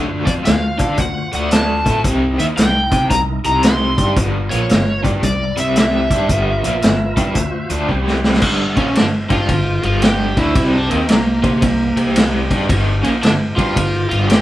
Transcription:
Already playing: D2 D3 A3 D4
0.09 F4 F#4 C5
0.25 F2 F3 C4 F4 D5, kick, closed hi-hat
0.44 D2 D3 A3 F5, snare, closed hi-hat
0.78 D3 D4 A4 D5, kick, closed hi-hat
0.97 D2 D3 A3 F#5, kick, closed hi-hat
1.32 D2 D3 A3 D4 F#5, closed hi-hat
1.51 A5, snare, closed hi-hat
1.85 A2 A3 E4 A4, kick, closed hi-hat
2.04 C2 C3 G3 C4 D#4 E4 A#4, kick, closed hi-hat
2.38 D#2 D#3 A#3 D#4 E5, closed hi-hat
2.57 C2 C3 G3 G5, snare, closed hi-hat
2.91 C3 C4 G4 C5, kick, closed hi-hat
3.10 C2 C3 G3 A#5, kick, closed hi-hat
3.44 C2 C3 G3 C4 A#5, closed hi-hat
3.63 C6, snare, closed hi-hat
3.97 G2 G3 D4 G4, kick, closed hi-hat
4.16 G1 G2 D3 G3 B3 F4 A#4, kick, closed hi-hat
4.50 A#1 A#2 F3 A#3 C#5, closed hi-hat
4.69 G1 G2 D3, snare, closed hi-hat
5.03 G2 G3 D4 G4, kick, closed hi-hat
5.22 C2 C3 G3 C4 E4 A#4 D5, kick, closed hi-hat
5.57 C2 C3 G3 C4 E5, closed hi-hat
5.76 E5, snare, closed hi-hat
6.10 G2 G3 D4 G4, kick, closed hi-hat
6.28 G1 G2 D3 G3 B3 F4 A#4, kick, closed hi-hat
6.63 A#1 A#2 F3 A#3, closed hi-hat
6.82 G1 G2 D3, snare, closed hi-hat
7.17 G2 G3 D4 G4, kick, closed hi-hat
7.33 D2 D3 A3 F4 F#4 C5, kick, closed hi-hat
7.70 D2 D3 A3 D4, closed hi-hat
7.88 C2 C3 G3 C4 G4 C5, kick
8.07 snare
8.24 snare
8.34 snare
8.42 G1 G2 D3 G3, kick, crash
8.77 A#1 A#2 F3 A#3 C#4, kick, ride
8.95 G1 G2 D3 D4, snare, ride
9.29 G2 G3 D4 F4 G4, kick, ride
9.49 G1 G2 D3, kick, ride
9.83 G1 G2 D3 G3 F4, ride
10.02 G4, snare, ride
10.36 D2 D3 A3 D4 E4, kick, ride
10.55 C2 C3 G3 C4, kick, ride
10.73 D4
10.89 D#2 D#3 A#3 C4 D#4, ride
11.08 C2 C3 G3 A#3, snare, ride
11.43 C3 C4 G4 C5, kick, ride
11.62 C2 C3 G3, kick, ride
11.96 C2 C3 G3 C4, ride
12.16 snare, ride
12.50 G2 G3 D4 G4, kick, ride
12.69 G1 G2 D3 G3, kick, ride
13.03 A#1 A#2 F3 A#3 C#4, ride
13.23 G1 G2 D3 D4, snare, ride
13.56 G2 G3 D4 F4 G4, kick, ride
13.76 G1 G2 D3, kick, ride
14.09 G1 G2 D3 G3 F4, ride
14.29 G4, snare, ride

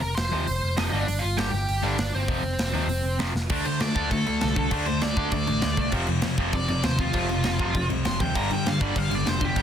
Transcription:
0.00 F1 A#4 A#5
0.15 F1 C5 C6, snare, open hi-hat
0.31 D#2 F2 C3 F3
0.47 F1, open hi-hat
0.63 F1
0.77 F1 F2 C3 F3 D#4 D#5, snare, open hi-hat
0.91 G1 G2 D3 G3 D4 D5
1.08 G1, open hi-hat
1.19 F4 F5
1.24 G1
1.37 G1 G2 D3 G3 G4 G5, snare, open hi-hat
1.51 G1 G4 G5
1.69 G1, open hi-hat
1.83 G1 G2 D3 G3 D4 D5
1.98 G1, snare, open hi-hat
2.14 G1 C4 C5
2.28 F1 F2 C3 F3, kick, open hi-hat
2.43 F1
2.58 F1, snare, open hi-hat
2.73 D#2 F2 C3 F3
2.88 F1, open hi-hat
3.04 F1
3.19 F2 C3 F3, snare, open hi-hat
3.35 F1, snare
3.50 D2 D3 A3 D4, kick, crash
3.65 D3 A3 C5, crash
3.80 D3 A3 D5, snare, crash
3.95 D2 D3 A3 D4, kick, crash
4.11 D2 D3 A3 A4, kick, crash
4.26 D2 D3 A3, crash
4.41 C2 D3 A3, snare, crash
4.55 D3 A3 D4, kick, crash
4.71 D2 D3 A3 D4, kick, crash
4.86 D3 A3 C5, crash
5.01 D2 D3 A3 D5, snare, crash
5.16 D3 A3 D4, kick, crash
5.31 D2 D3 A3 D5, kick, crash
5.47 A1 D3 A3, crash
5.62 D2 D3 A3, snare, crash
5.77 C2 D3 A3 D4, kick, crash
5.92 F1 F2 C3 F3, kick, crash
6.07 F2 C3, crash
6.22 F2 C3, snare, crash
6.37 F1 F2 C3 F3, kick, crash
6.53 F1 F2 C3 D5, kick, crash
6.68 F1 F2 C3 D5, crash
6.83 D#2 F2 C3 C5, snare, crash
6.98 F2 C3 F3 F4, kick, crash
7.13 F1 F2 C3 F3, kick, crash
7.29 F2 C3, crash
7.44 F1 F2 C3, snare, crash
7.59 F2 C3 F3, kick, crash
7.75 F1 F2 C3, kick, crash
7.90 C2 F2 C3, crash
8.05 F1 F2 C3 C6, snare, crash
8.20 D#2 F2 C3 F3 G5, kick, crash
8.35 G1 G2 D3 G3 A#5, kick, crash
8.50 G2 D3 G5, crash
8.66 G2 D3 F5, snare, crash
8.80 G1 G2 D3 G3 D5, kick, crash
8.96 G1 G2 D3 F5, kick, crash
9.10 G1 G2 D3, crash
9.15 D5
9.26 F1 G2 D3 C5, snare, crash
9.40 G2 D3 G3, kick, crash
9.45 G4
9.56 G1 G2 D3 G3, kick, crash

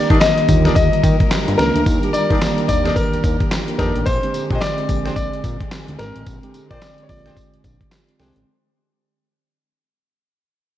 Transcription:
Already playing: D#3 G3 A#3 D4 G4 A#4 D5
0.10 D#3 A#3 D4 D#4 G4 A#4 D5, kick, closed hi-hat
0.20 D#5, snare, clap, closed hi-hat, tambourine
0.38 closed hi-hat
0.49 D#2 D3 D#3 A#3 F4, kick, closed hi-hat, tambourine
0.65 D4 D#4 G4 A#4 D5, snare, closed hi-hat
0.75 D#2 D#5, kick, closed hi-hat, tambourine
0.93 closed hi-hat
1.04 D#3, kick, closed hi-hat, tambourine
1.20 kick, closed hi-hat
1.31 snare, clap, closed hi-hat, tambourine
1.48 G2, closed hi-hat
1.58 C#2 D#3 A#3 D4 G4 A#4, snare, closed hi-hat
1.75 D2, closed hi-hat
1.86 D#2, kick, closed hi-hat, tambourine
2.03 D#3 A#3 D4 G4, closed hi-hat
2.13 D#3 D5, closed hi-hat, tambourine
2.30 D#3 A#3 D4 D#4 G4 A#4 D5, kick, closed hi-hat
2.42 snare, clap, closed hi-hat, tambourine
2.58 closed hi-hat
2.68 D#2 D#3 A#3 D4 G4 D5, kick, closed hi-hat, tambourine
2.85 D4 D#4 G4 A#4 D5, snare, closed hi-hat
2.96 A#4, kick, closed hi-hat, tambourine
3.13 D#2, closed hi-hat
3.24 D#2, kick, closed hi-hat, tambourine
3.40 kick, closed hi-hat
3.51 snare, clap, closed hi-hat, tambourine
3.68 closed hi-hat
3.78 F2 D#3 A#3 D4 D#4 G4 A#4 D5, kick, snare, closed hi-hat
3.96 A1, closed hi-hat
4.06 A#1 D3 G#3 C4 C5, kick, closed hi-hat, tambourine
4.23 D3 G#3 C4 G4, closed hi-hat
4.34 A#2, closed hi-hat, tambourine
4.50 A#2 D3 G#3 C4 D4 G4 G#4 C5, kick, closed hi-hat
4.55 D#5
4.61 D5, snare, clap, closed hi-hat, tambourine
4.78 closed hi-hat
4.89 A#1 D3 G#3 C4 G4, kick, closed hi-hat, tambourine
5.05 C4 D4 G4 G#4 C5, snare, closed hi-hat
5.16 A#1 D5, kick, closed hi-hat, tambourine
5.33 closed hi-hat
5.44 A#2, kick, closed hi-hat, tambourine
5.61 kick, closed hi-hat
5.71 snare, clap, closed hi-hat, tambourine
5.88 D2, closed hi-hat
5.99 G#1 D3 G#3 C4 G4 A#4, snare, closed hi-hat
6.16 A1, closed hi-hat
6.26 A#1, kick, closed hi-hat, tambourine
6.43 D3 G#3 C4 G4, closed hi-hat
6.54 A#2, closed hi-hat, tambourine
6.70 A#2 D3 G#3 C4 D4 G4 G#4 C5 D5, kick, closed hi-hat
6.82 snare, clap, closed hi-hat, tambourine
6.98 closed hi-hat
7.03 C#5
7.09 A#1 D3 G#3 C4 F4 D5, kick, open hi-hat, tambourine
7.26 C4 D4 G4 G#4 C5, snare, closed hi-hat
7.37 kick, closed hi-hat, tambourine
7.54 A#1, closed hi-hat
7.64 A#1, kick, closed hi-hat, tambourine
7.81 kick, closed hi-hat
7.91 snare, clap, closed hi-hat, tambourine
8.09 closed hi-hat
8.19 C2 D3 G#3 C4 D4 G4 G#4 C5, snare, open hi-hat
8.36 A1, closed hi-hat

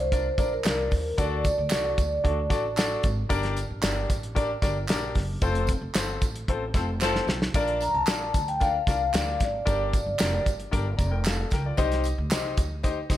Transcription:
Already playing: C2
0.00 C5
0.12 D4 F4 A#4 D5, kick, closed hi-hat, tambourine
0.38 A#1 D4 F4 A#4 D5, kick, closed hi-hat, tambourine
0.53 A#4
0.64 C2 D4 F4 A#4 D5, snare, clap, closed hi-hat, tambourine
0.91 D#2, kick, open hi-hat, tambourine
1.18 D2 D4 F#4 A4 D5, kick, closed hi-hat, tambourine
1.44 kick, closed hi-hat, tambourine
1.58 D2 D5
1.70 D4 F#4 A4 D5, snare, clap, closed hi-hat, tambourine
1.98 D2, kick, closed hi-hat, tambourine
2.24 D2 D4 F#4 A4 D5, kick, closed hi-hat
2.50 A1 D4 F#4 A4 D5, kick, snare, closed hi-hat, tambourine
2.77 D4 F#4 A4 D5, snare, clap, closed hi-hat, tambourine
3.03 G#1, kick, closed hi-hat, tambourine
3.29 G1 D4 G4 A#4 D5, kick, closed hi-hat, tambourine
3.43 snare, closed hi-hat
3.56 closed hi-hat, tambourine
3.70 A1
3.82 G1 D4 G4 A#4 D5, snare, clap, closed hi-hat, tambourine
4.10 A1, kick, closed hi-hat, tambourine
4.23 closed hi-hat
4.35 D4 G4 A#4 D5, kick, closed hi-hat, tambourine
4.62 G1 D4 G4 A#4 D5, kick, snare, closed hi-hat, tambourine
4.88 A#1 D4 G4 A#4 D5, snare, clap, closed hi-hat, tambourine
5.15 F#1, kick, snare, open hi-hat
5.42 F1 C4 F4 A4 C5, kick, closed hi-hat, tambourine
5.55 closed hi-hat
5.67 kick, closed hi-hat, tambourine
5.81 F1
5.94 G1 C4 F4 A4 C5, snare, clap, closed hi-hat, tambourine
6.21 A1, kick, closed hi-hat, tambourine
6.36 closed hi-hat
6.48 A1 C4 F4 A4 C5, kick, closed hi-hat
6.74 F1 F3 C4 F4 A4 C5, kick, snare, closed hi-hat, tambourine
7.01 F3 C4 F4 A4 C5, snare, clap, tambourine
7.16 snare
7.27 B1, snare, tambourine
7.42 snare
7.54 A#1 D4 F4 A#4 D5, kick, closed hi-hat, tambourine
7.68 closed hi-hat
7.81 A#5, closed hi-hat, tambourine
7.94 C2 A5
8.07 A#1 D4 F4 A#4 D5, snare, clap, closed hi-hat, tambourine
8.34 D2, kick, closed hi-hat, tambourine
8.48 G5, closed hi-hat
8.60 D4 F4 A#4 D5 F5, kick, closed hi-hat, tambourine
8.87 C2 D4 F4 A#4 D5 F5, kick, snare, closed hi-hat, tambourine
9.14 D2 D4 F4 A#4 D5, snare, clap, closed hi-hat, tambourine
9.40 G#1 D5, kick, snare, closed hi-hat, tambourine
9.65 G1 D4 G4 A#4 D5, kick, closed hi-hat, tambourine
9.93 kick, closed hi-hat, tambourine
10.06 G1
10.19 F1 D4 G4 A#4 D5, snare, clap, closed hi-hat, tambourine
10.46 G1, kick, closed hi-hat, tambourine
10.60 closed hi-hat
10.71 G1 D4 G4 A#4 D5, kick, closed hi-hat, tambourine
10.97 F1 D5 A#5, kick, closed hi-hat, tambourine
11.11 A#4 G5
11.25 A4 F5, snare, clap, closed hi-hat, tambourine
11.50 C#2 A#4 G5, kick, snare, closed hi-hat, tambourine
11.66 F4 D5
11.77 C2 D#4 G4 C5 D#5, kick, closed hi-hat, tambourine
11.92 snare, closed hi-hat
12.04 closed hi-hat, tambourine
12.18 D2
12.31 C2 D#4 G4 C5 D#5, snare, clap, closed hi-hat, tambourine
12.57 D2, kick, closed hi-hat, tambourine
12.83 D#4 G4 C5 D#5, kick, closed hi-hat, tambourine
13.10 C2 D#4 G4 C5 D#5, kick, snare, closed hi-hat, tambourine

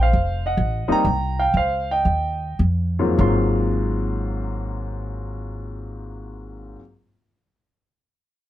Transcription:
Already playing: A#1
0.01 C5 F5
0.13 F1
0.46 D#5 F#5
0.57 A1
0.88 G3 A#3 C4 D#4 G5, muted upright bass stroke
0.92 A#5
1.05 C2
1.39 F5 G5
1.54 C#2 C5 F5
1.91 D#5 G5
2.05 D#2
2.59 F2
2.99 G#2 F#3 A#3 C4 F4
3.18 G#1 G#2 F#3 A#3 C4 F4 C6

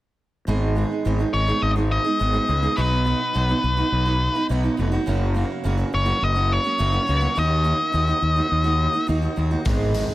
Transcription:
0.47 G#1 G#2 D#3 G#3 B3 D#4 G#4
0.75 G#3 B3 D#4 G#4
1.05 G#1 G#2 D#3 G#3 B3 D#4 G#4
1.19 G#3 B3 D#4 G#4
1.33 G#1 C#5, muted steel-string acoustic guitar stroke
1.47 G#3 B3 D#4 G#4
1.62 G#1 D#5
1.76 G#3 B3 D#4 G#4
1.92 D#5
2.04 G#3 B3 D#4 G#4
2.19 G#1 G#2 D#3 G#3 B3 D#4 G#4
2.34 G#3 B3 D#4 G#4
2.47 C#2 G#3 B3 D#4 G#4
2.63 G#3 B3 D#4 G#4
2.77 B1 B2 F#3 B3 D#4 F#4 B4
3.05 F#3 B3 D#4 F#4
3.34 B1 B2 F#3 B3 D#4 F#4
3.49 B3 D#4 F#4
3.63 B1, muted steel-string acoustic guitar stroke
3.77 B3 D#4 F#4
3.92 B1
4.06 B3 D#4 F#4
4.35 B3 D#4 F#4
4.49 B1 B2 F#3 B3 D#4 F#4
4.63 B3 D#4 F#4
4.77 F1 F#3 B3 D#4 F#4
4.92 B3 D#4 F#4
5.06 F#1 F#2 C#3 F#3 A#3 C#4 F#4
5.34 F#3 A#3 C#4 F#4
5.64 F#1 F#2 C#3 F#3 A#3 C#4 F#4
5.77 F#3 A#3 C#4 F#4
5.93 F#1 C#5, muted steel-string acoustic guitar stroke
6.06 F#3 A#3 C#4 F#4
6.22 F#1 D#5
6.35 F#3 A#3 C#4 F#4
6.52 C#5
6.64 F#3 A#3 C#4 F#4
6.78 F#1 F#2 C#3 F#3 A#3 C#4 F#4
6.92 F#3 A#3 C#4 F#4
7.07 C#2 F#3 A#3 C#4 F#4
7.20 F#3 A#3 C#4 F#4
7.35 D#2 D#3 A#3 D#4 F#4 D#5
7.64 D#3 A#3 D#4 F#4
7.92 D#2 D#3 A#3 D#4 F#4
8.07 A#3 D#4 F#4
8.22 D#2, muted steel-string acoustic guitar stroke
8.36 A#3 D#4 F#4
8.51 D#2
8.64 A#3 D#4 F#4
8.93 A#3 D#4 F#4
9.07 D#2 D#3 A#3 D#4 F#4
9.22 A#3 D#4 F#4
9.36 D#2 D#3 A#3 D#4 F#4
9.51 A#3 D#4 F#4
9.65 G#1 G#2 D#3 G#3 B3 D#4 G#4, kick, closed hi-hat
9.94 G#3 B3 D#4 G#4, closed hi-hat

